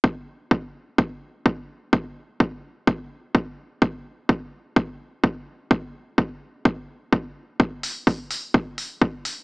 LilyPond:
\new DrumStaff \with { instrumentName = "Drums" } \drummode { \time 4/4 \tempo 4 = 127 bd4 bd4 bd4 bd4 | bd4 bd4 bd4 bd4 | bd4 bd4 bd4 bd4 | bd4 bd4 bd4 bd4 |
bd8 hho8 <hho bd>8 hho8 bd8 hho8 bd8 hho8 | }